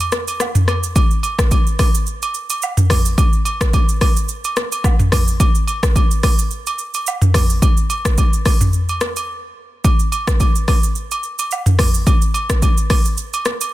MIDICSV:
0, 0, Header, 1, 2, 480
1, 0, Start_track
1, 0, Tempo, 555556
1, 826, Time_signature, 4, 2, 24, 8
1, 11867, End_track
2, 0, Start_track
2, 0, Title_t, "Drums"
2, 1, Note_on_c, 9, 82, 56
2, 5, Note_on_c, 9, 67, 77
2, 87, Note_off_c, 9, 82, 0
2, 91, Note_off_c, 9, 67, 0
2, 104, Note_on_c, 9, 82, 51
2, 106, Note_on_c, 9, 37, 102
2, 190, Note_off_c, 9, 82, 0
2, 193, Note_off_c, 9, 37, 0
2, 240, Note_on_c, 9, 82, 97
2, 243, Note_on_c, 9, 67, 69
2, 326, Note_off_c, 9, 82, 0
2, 330, Note_off_c, 9, 67, 0
2, 346, Note_on_c, 9, 37, 89
2, 347, Note_on_c, 9, 82, 85
2, 356, Note_on_c, 9, 77, 90
2, 432, Note_off_c, 9, 37, 0
2, 433, Note_off_c, 9, 82, 0
2, 442, Note_off_c, 9, 77, 0
2, 476, Note_on_c, 9, 45, 88
2, 478, Note_on_c, 9, 82, 59
2, 562, Note_off_c, 9, 45, 0
2, 565, Note_off_c, 9, 82, 0
2, 586, Note_on_c, 9, 37, 93
2, 589, Note_on_c, 9, 82, 53
2, 593, Note_on_c, 9, 67, 71
2, 672, Note_off_c, 9, 37, 0
2, 676, Note_off_c, 9, 82, 0
2, 679, Note_off_c, 9, 67, 0
2, 720, Note_on_c, 9, 82, 92
2, 807, Note_off_c, 9, 82, 0
2, 827, Note_on_c, 9, 36, 127
2, 828, Note_on_c, 9, 67, 82
2, 828, Note_on_c, 9, 82, 98
2, 913, Note_off_c, 9, 36, 0
2, 914, Note_off_c, 9, 67, 0
2, 915, Note_off_c, 9, 82, 0
2, 957, Note_on_c, 9, 82, 50
2, 1043, Note_off_c, 9, 82, 0
2, 1064, Note_on_c, 9, 67, 80
2, 1068, Note_on_c, 9, 82, 54
2, 1151, Note_off_c, 9, 67, 0
2, 1154, Note_off_c, 9, 82, 0
2, 1198, Note_on_c, 9, 36, 97
2, 1200, Note_on_c, 9, 37, 117
2, 1200, Note_on_c, 9, 82, 90
2, 1284, Note_off_c, 9, 36, 0
2, 1286, Note_off_c, 9, 37, 0
2, 1287, Note_off_c, 9, 82, 0
2, 1306, Note_on_c, 9, 82, 83
2, 1307, Note_on_c, 9, 36, 96
2, 1312, Note_on_c, 9, 67, 72
2, 1393, Note_off_c, 9, 82, 0
2, 1394, Note_off_c, 9, 36, 0
2, 1398, Note_off_c, 9, 67, 0
2, 1441, Note_on_c, 9, 82, 62
2, 1527, Note_off_c, 9, 82, 0
2, 1547, Note_on_c, 9, 46, 59
2, 1547, Note_on_c, 9, 82, 45
2, 1548, Note_on_c, 9, 36, 99
2, 1548, Note_on_c, 9, 37, 85
2, 1552, Note_on_c, 9, 67, 73
2, 1634, Note_off_c, 9, 37, 0
2, 1634, Note_off_c, 9, 46, 0
2, 1634, Note_off_c, 9, 82, 0
2, 1635, Note_off_c, 9, 36, 0
2, 1638, Note_off_c, 9, 67, 0
2, 1681, Note_on_c, 9, 82, 105
2, 1767, Note_off_c, 9, 82, 0
2, 1784, Note_on_c, 9, 82, 71
2, 1870, Note_off_c, 9, 82, 0
2, 1921, Note_on_c, 9, 82, 55
2, 1924, Note_on_c, 9, 67, 77
2, 2008, Note_off_c, 9, 82, 0
2, 2011, Note_off_c, 9, 67, 0
2, 2024, Note_on_c, 9, 82, 49
2, 2111, Note_off_c, 9, 82, 0
2, 2158, Note_on_c, 9, 82, 99
2, 2162, Note_on_c, 9, 67, 68
2, 2245, Note_off_c, 9, 82, 0
2, 2248, Note_off_c, 9, 67, 0
2, 2266, Note_on_c, 9, 82, 85
2, 2275, Note_on_c, 9, 77, 91
2, 2352, Note_off_c, 9, 82, 0
2, 2362, Note_off_c, 9, 77, 0
2, 2395, Note_on_c, 9, 45, 86
2, 2398, Note_on_c, 9, 82, 62
2, 2482, Note_off_c, 9, 45, 0
2, 2485, Note_off_c, 9, 82, 0
2, 2505, Note_on_c, 9, 37, 97
2, 2509, Note_on_c, 9, 36, 92
2, 2509, Note_on_c, 9, 46, 74
2, 2509, Note_on_c, 9, 82, 53
2, 2512, Note_on_c, 9, 67, 71
2, 2592, Note_off_c, 9, 37, 0
2, 2595, Note_off_c, 9, 46, 0
2, 2595, Note_off_c, 9, 82, 0
2, 2596, Note_off_c, 9, 36, 0
2, 2599, Note_off_c, 9, 67, 0
2, 2640, Note_on_c, 9, 82, 90
2, 2726, Note_off_c, 9, 82, 0
2, 2746, Note_on_c, 9, 36, 127
2, 2747, Note_on_c, 9, 67, 80
2, 2747, Note_on_c, 9, 82, 94
2, 2833, Note_off_c, 9, 36, 0
2, 2833, Note_off_c, 9, 67, 0
2, 2834, Note_off_c, 9, 82, 0
2, 2876, Note_on_c, 9, 82, 51
2, 2963, Note_off_c, 9, 82, 0
2, 2984, Note_on_c, 9, 67, 77
2, 2988, Note_on_c, 9, 82, 56
2, 3070, Note_off_c, 9, 67, 0
2, 3074, Note_off_c, 9, 82, 0
2, 3117, Note_on_c, 9, 36, 96
2, 3119, Note_on_c, 9, 37, 115
2, 3120, Note_on_c, 9, 82, 88
2, 3204, Note_off_c, 9, 36, 0
2, 3206, Note_off_c, 9, 37, 0
2, 3206, Note_off_c, 9, 82, 0
2, 3226, Note_on_c, 9, 82, 79
2, 3227, Note_on_c, 9, 36, 99
2, 3231, Note_on_c, 9, 67, 77
2, 3312, Note_off_c, 9, 82, 0
2, 3313, Note_off_c, 9, 36, 0
2, 3317, Note_off_c, 9, 67, 0
2, 3360, Note_on_c, 9, 82, 61
2, 3446, Note_off_c, 9, 82, 0
2, 3466, Note_on_c, 9, 37, 82
2, 3466, Note_on_c, 9, 46, 62
2, 3466, Note_on_c, 9, 82, 44
2, 3468, Note_on_c, 9, 36, 92
2, 3471, Note_on_c, 9, 67, 78
2, 3552, Note_off_c, 9, 46, 0
2, 3552, Note_off_c, 9, 82, 0
2, 3553, Note_off_c, 9, 37, 0
2, 3554, Note_off_c, 9, 36, 0
2, 3558, Note_off_c, 9, 67, 0
2, 3600, Note_on_c, 9, 82, 105
2, 3686, Note_off_c, 9, 82, 0
2, 3703, Note_on_c, 9, 82, 70
2, 3790, Note_off_c, 9, 82, 0
2, 3840, Note_on_c, 9, 82, 57
2, 3844, Note_on_c, 9, 67, 78
2, 3927, Note_off_c, 9, 82, 0
2, 3930, Note_off_c, 9, 67, 0
2, 3944, Note_on_c, 9, 82, 51
2, 3946, Note_on_c, 9, 37, 103
2, 4030, Note_off_c, 9, 82, 0
2, 4033, Note_off_c, 9, 37, 0
2, 4079, Note_on_c, 9, 82, 98
2, 4081, Note_on_c, 9, 67, 70
2, 4165, Note_off_c, 9, 82, 0
2, 4168, Note_off_c, 9, 67, 0
2, 4184, Note_on_c, 9, 36, 97
2, 4185, Note_on_c, 9, 37, 84
2, 4186, Note_on_c, 9, 82, 89
2, 4195, Note_on_c, 9, 77, 87
2, 4270, Note_off_c, 9, 36, 0
2, 4271, Note_off_c, 9, 37, 0
2, 4272, Note_off_c, 9, 82, 0
2, 4281, Note_off_c, 9, 77, 0
2, 4314, Note_on_c, 9, 45, 91
2, 4317, Note_on_c, 9, 82, 59
2, 4401, Note_off_c, 9, 45, 0
2, 4404, Note_off_c, 9, 82, 0
2, 4424, Note_on_c, 9, 37, 96
2, 4427, Note_on_c, 9, 46, 76
2, 4427, Note_on_c, 9, 82, 51
2, 4429, Note_on_c, 9, 36, 95
2, 4432, Note_on_c, 9, 67, 70
2, 4510, Note_off_c, 9, 37, 0
2, 4514, Note_off_c, 9, 46, 0
2, 4514, Note_off_c, 9, 82, 0
2, 4515, Note_off_c, 9, 36, 0
2, 4518, Note_off_c, 9, 67, 0
2, 4560, Note_on_c, 9, 82, 91
2, 4646, Note_off_c, 9, 82, 0
2, 4666, Note_on_c, 9, 36, 127
2, 4666, Note_on_c, 9, 67, 83
2, 4667, Note_on_c, 9, 82, 97
2, 4752, Note_off_c, 9, 36, 0
2, 4753, Note_off_c, 9, 67, 0
2, 4753, Note_off_c, 9, 82, 0
2, 4795, Note_on_c, 9, 82, 51
2, 4882, Note_off_c, 9, 82, 0
2, 4903, Note_on_c, 9, 67, 78
2, 4906, Note_on_c, 9, 82, 58
2, 4990, Note_off_c, 9, 67, 0
2, 4993, Note_off_c, 9, 82, 0
2, 5037, Note_on_c, 9, 36, 97
2, 5039, Note_on_c, 9, 37, 121
2, 5040, Note_on_c, 9, 82, 90
2, 5123, Note_off_c, 9, 36, 0
2, 5125, Note_off_c, 9, 37, 0
2, 5126, Note_off_c, 9, 82, 0
2, 5146, Note_on_c, 9, 36, 98
2, 5146, Note_on_c, 9, 82, 83
2, 5150, Note_on_c, 9, 67, 73
2, 5232, Note_off_c, 9, 82, 0
2, 5233, Note_off_c, 9, 36, 0
2, 5237, Note_off_c, 9, 67, 0
2, 5279, Note_on_c, 9, 82, 64
2, 5366, Note_off_c, 9, 82, 0
2, 5385, Note_on_c, 9, 46, 63
2, 5385, Note_on_c, 9, 82, 45
2, 5386, Note_on_c, 9, 37, 81
2, 5387, Note_on_c, 9, 36, 94
2, 5391, Note_on_c, 9, 67, 74
2, 5472, Note_off_c, 9, 37, 0
2, 5472, Note_off_c, 9, 46, 0
2, 5472, Note_off_c, 9, 82, 0
2, 5473, Note_off_c, 9, 36, 0
2, 5477, Note_off_c, 9, 67, 0
2, 5518, Note_on_c, 9, 82, 104
2, 5605, Note_off_c, 9, 82, 0
2, 5622, Note_on_c, 9, 82, 69
2, 5709, Note_off_c, 9, 82, 0
2, 5760, Note_on_c, 9, 82, 57
2, 5764, Note_on_c, 9, 67, 81
2, 5846, Note_off_c, 9, 82, 0
2, 5850, Note_off_c, 9, 67, 0
2, 5862, Note_on_c, 9, 82, 49
2, 5949, Note_off_c, 9, 82, 0
2, 5998, Note_on_c, 9, 82, 100
2, 6002, Note_on_c, 9, 67, 67
2, 6084, Note_off_c, 9, 82, 0
2, 6089, Note_off_c, 9, 67, 0
2, 6105, Note_on_c, 9, 82, 91
2, 6115, Note_on_c, 9, 77, 94
2, 6192, Note_off_c, 9, 82, 0
2, 6201, Note_off_c, 9, 77, 0
2, 6234, Note_on_c, 9, 45, 90
2, 6237, Note_on_c, 9, 82, 60
2, 6321, Note_off_c, 9, 45, 0
2, 6323, Note_off_c, 9, 82, 0
2, 6344, Note_on_c, 9, 37, 96
2, 6347, Note_on_c, 9, 46, 72
2, 6347, Note_on_c, 9, 82, 53
2, 6348, Note_on_c, 9, 36, 94
2, 6352, Note_on_c, 9, 67, 68
2, 6430, Note_off_c, 9, 37, 0
2, 6434, Note_off_c, 9, 46, 0
2, 6434, Note_off_c, 9, 82, 0
2, 6435, Note_off_c, 9, 36, 0
2, 6438, Note_off_c, 9, 67, 0
2, 6478, Note_on_c, 9, 82, 88
2, 6564, Note_off_c, 9, 82, 0
2, 6585, Note_on_c, 9, 36, 127
2, 6586, Note_on_c, 9, 67, 79
2, 6586, Note_on_c, 9, 82, 95
2, 6672, Note_off_c, 9, 36, 0
2, 6672, Note_off_c, 9, 67, 0
2, 6672, Note_off_c, 9, 82, 0
2, 6715, Note_on_c, 9, 82, 52
2, 6801, Note_off_c, 9, 82, 0
2, 6824, Note_on_c, 9, 67, 78
2, 6826, Note_on_c, 9, 82, 55
2, 6911, Note_off_c, 9, 67, 0
2, 6912, Note_off_c, 9, 82, 0
2, 6957, Note_on_c, 9, 36, 93
2, 6959, Note_on_c, 9, 37, 117
2, 6959, Note_on_c, 9, 82, 90
2, 7043, Note_off_c, 9, 36, 0
2, 7045, Note_off_c, 9, 37, 0
2, 7046, Note_off_c, 9, 82, 0
2, 7065, Note_on_c, 9, 82, 82
2, 7066, Note_on_c, 9, 36, 97
2, 7071, Note_on_c, 9, 67, 74
2, 7152, Note_off_c, 9, 82, 0
2, 7153, Note_off_c, 9, 36, 0
2, 7158, Note_off_c, 9, 67, 0
2, 7198, Note_on_c, 9, 82, 60
2, 7285, Note_off_c, 9, 82, 0
2, 7305, Note_on_c, 9, 37, 82
2, 7305, Note_on_c, 9, 46, 62
2, 7305, Note_on_c, 9, 82, 44
2, 7307, Note_on_c, 9, 36, 94
2, 7312, Note_on_c, 9, 67, 75
2, 7391, Note_off_c, 9, 46, 0
2, 7391, Note_off_c, 9, 82, 0
2, 7392, Note_off_c, 9, 37, 0
2, 7393, Note_off_c, 9, 36, 0
2, 7399, Note_off_c, 9, 67, 0
2, 7437, Note_on_c, 9, 45, 96
2, 7439, Note_on_c, 9, 82, 103
2, 7523, Note_off_c, 9, 45, 0
2, 7526, Note_off_c, 9, 82, 0
2, 7543, Note_on_c, 9, 82, 70
2, 7629, Note_off_c, 9, 82, 0
2, 7679, Note_on_c, 9, 82, 58
2, 7684, Note_on_c, 9, 67, 75
2, 7766, Note_off_c, 9, 82, 0
2, 7770, Note_off_c, 9, 67, 0
2, 7783, Note_on_c, 9, 82, 50
2, 7786, Note_on_c, 9, 37, 108
2, 7869, Note_off_c, 9, 82, 0
2, 7872, Note_off_c, 9, 37, 0
2, 7918, Note_on_c, 9, 82, 96
2, 7921, Note_on_c, 9, 67, 72
2, 8004, Note_off_c, 9, 82, 0
2, 8008, Note_off_c, 9, 67, 0
2, 8506, Note_on_c, 9, 36, 127
2, 8506, Note_on_c, 9, 82, 93
2, 8507, Note_on_c, 9, 67, 80
2, 8592, Note_off_c, 9, 36, 0
2, 8593, Note_off_c, 9, 82, 0
2, 8594, Note_off_c, 9, 67, 0
2, 8636, Note_on_c, 9, 82, 49
2, 8722, Note_off_c, 9, 82, 0
2, 8745, Note_on_c, 9, 67, 80
2, 8746, Note_on_c, 9, 82, 59
2, 8831, Note_off_c, 9, 67, 0
2, 8832, Note_off_c, 9, 82, 0
2, 8877, Note_on_c, 9, 36, 96
2, 8878, Note_on_c, 9, 37, 112
2, 8879, Note_on_c, 9, 82, 87
2, 8963, Note_off_c, 9, 36, 0
2, 8965, Note_off_c, 9, 37, 0
2, 8966, Note_off_c, 9, 82, 0
2, 8986, Note_on_c, 9, 82, 86
2, 8987, Note_on_c, 9, 36, 97
2, 8992, Note_on_c, 9, 67, 72
2, 9072, Note_off_c, 9, 82, 0
2, 9073, Note_off_c, 9, 36, 0
2, 9078, Note_off_c, 9, 67, 0
2, 9119, Note_on_c, 9, 82, 63
2, 9205, Note_off_c, 9, 82, 0
2, 9226, Note_on_c, 9, 46, 63
2, 9226, Note_on_c, 9, 82, 44
2, 9227, Note_on_c, 9, 37, 79
2, 9228, Note_on_c, 9, 36, 95
2, 9232, Note_on_c, 9, 67, 72
2, 9313, Note_off_c, 9, 37, 0
2, 9313, Note_off_c, 9, 46, 0
2, 9313, Note_off_c, 9, 82, 0
2, 9314, Note_off_c, 9, 36, 0
2, 9319, Note_off_c, 9, 67, 0
2, 9360, Note_on_c, 9, 82, 98
2, 9446, Note_off_c, 9, 82, 0
2, 9464, Note_on_c, 9, 82, 74
2, 9550, Note_off_c, 9, 82, 0
2, 9601, Note_on_c, 9, 82, 56
2, 9605, Note_on_c, 9, 67, 77
2, 9687, Note_off_c, 9, 82, 0
2, 9692, Note_off_c, 9, 67, 0
2, 9705, Note_on_c, 9, 82, 50
2, 9791, Note_off_c, 9, 82, 0
2, 9839, Note_on_c, 9, 82, 100
2, 9843, Note_on_c, 9, 67, 70
2, 9926, Note_off_c, 9, 82, 0
2, 9930, Note_off_c, 9, 67, 0
2, 9946, Note_on_c, 9, 82, 86
2, 9957, Note_on_c, 9, 77, 92
2, 10032, Note_off_c, 9, 82, 0
2, 10043, Note_off_c, 9, 77, 0
2, 10075, Note_on_c, 9, 45, 90
2, 10078, Note_on_c, 9, 82, 59
2, 10161, Note_off_c, 9, 45, 0
2, 10164, Note_off_c, 9, 82, 0
2, 10184, Note_on_c, 9, 37, 97
2, 10188, Note_on_c, 9, 46, 74
2, 10188, Note_on_c, 9, 82, 51
2, 10189, Note_on_c, 9, 36, 96
2, 10193, Note_on_c, 9, 67, 68
2, 10270, Note_off_c, 9, 37, 0
2, 10274, Note_off_c, 9, 46, 0
2, 10274, Note_off_c, 9, 82, 0
2, 10275, Note_off_c, 9, 36, 0
2, 10280, Note_off_c, 9, 67, 0
2, 10319, Note_on_c, 9, 82, 92
2, 10406, Note_off_c, 9, 82, 0
2, 10426, Note_on_c, 9, 36, 127
2, 10426, Note_on_c, 9, 82, 94
2, 10428, Note_on_c, 9, 67, 76
2, 10512, Note_off_c, 9, 36, 0
2, 10513, Note_off_c, 9, 82, 0
2, 10514, Note_off_c, 9, 67, 0
2, 10555, Note_on_c, 9, 82, 52
2, 10641, Note_off_c, 9, 82, 0
2, 10665, Note_on_c, 9, 67, 78
2, 10666, Note_on_c, 9, 82, 59
2, 10751, Note_off_c, 9, 67, 0
2, 10752, Note_off_c, 9, 82, 0
2, 10797, Note_on_c, 9, 36, 91
2, 10798, Note_on_c, 9, 37, 115
2, 10798, Note_on_c, 9, 82, 87
2, 10883, Note_off_c, 9, 36, 0
2, 10884, Note_off_c, 9, 37, 0
2, 10885, Note_off_c, 9, 82, 0
2, 10905, Note_on_c, 9, 82, 82
2, 10907, Note_on_c, 9, 36, 96
2, 10912, Note_on_c, 9, 67, 75
2, 10991, Note_off_c, 9, 82, 0
2, 10993, Note_off_c, 9, 36, 0
2, 10998, Note_off_c, 9, 67, 0
2, 11038, Note_on_c, 9, 82, 62
2, 11125, Note_off_c, 9, 82, 0
2, 11145, Note_on_c, 9, 46, 63
2, 11145, Note_on_c, 9, 82, 43
2, 11146, Note_on_c, 9, 37, 85
2, 11147, Note_on_c, 9, 36, 97
2, 11152, Note_on_c, 9, 67, 74
2, 11231, Note_off_c, 9, 46, 0
2, 11231, Note_off_c, 9, 82, 0
2, 11232, Note_off_c, 9, 37, 0
2, 11234, Note_off_c, 9, 36, 0
2, 11238, Note_off_c, 9, 67, 0
2, 11279, Note_on_c, 9, 82, 100
2, 11365, Note_off_c, 9, 82, 0
2, 11383, Note_on_c, 9, 82, 73
2, 11470, Note_off_c, 9, 82, 0
2, 11520, Note_on_c, 9, 82, 57
2, 11524, Note_on_c, 9, 67, 76
2, 11607, Note_off_c, 9, 82, 0
2, 11610, Note_off_c, 9, 67, 0
2, 11623, Note_on_c, 9, 82, 48
2, 11626, Note_on_c, 9, 37, 106
2, 11710, Note_off_c, 9, 82, 0
2, 11712, Note_off_c, 9, 37, 0
2, 11759, Note_on_c, 9, 82, 105
2, 11762, Note_on_c, 9, 67, 70
2, 11845, Note_off_c, 9, 82, 0
2, 11849, Note_off_c, 9, 67, 0
2, 11867, End_track
0, 0, End_of_file